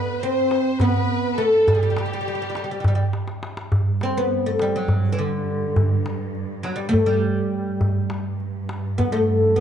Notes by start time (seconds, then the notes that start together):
Already playing: B3 B4
0.20 C4 C5
0.51 darbuka tek
0.80 B3 B4, darbuka dum
1.38 A3 A4
1.67 G3 G4, darbuka dum
1.75 G3
1.83 G3
1.90 G3
1.97 G3, darbuka tek
2.06 G3
2.13 G3
2.21 G3
2.28 G3
2.35 G3
2.42 G3
2.50 G3
2.55 G3, darbuka tek
2.64 G3
2.71 G3
2.80 G3
2.84 G3, darbuka dum
2.95 G3
2.99 darbuka ka
3.13 darbuka tek
3.28 darbuka ka
3.43 darbuka tek
3.57 darbuka ka
3.72 G2, darbuka dum
4.01 C4, darbuka tek
4.17 B3
4.31 darbuka ka
4.46 A3
4.59 G3, darbuka tek
4.76 F#3
4.88 darbuka dum
5.03 darbuka ka
5.12 E3
5.18 D3
5.76 darbuka dum
6.06 darbuka tek
6.35 darbuka ka
6.63 F#3, darbuka tek
6.76 G3
6.89 A3
6.93 darbuka dum
7.06 G3, darbuka ka
7.80 G2, darbuka dum
8.10 darbuka tek
8.40 darbuka ka
8.69 darbuka tek
8.98 B3, darbuka dum
9.12 A3, darbuka ka
9.56 B3